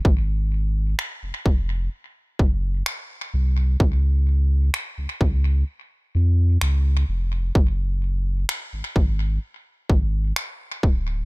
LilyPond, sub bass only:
\new Staff \with { instrumentName = "Sub bass" } { \clef bass \time 4/4 \key des \mixolydian \tempo 4 = 64 aes,,4 r16 f,,16 f,,8 r8 ges,,8 r8 c,8 | des,4 r16 des,16 des,8 r8 f,8 des,8 f,,8 | ges,,4 r16 aes,,16 aes,,8 r8 aes,,8 r8 d,,8 | }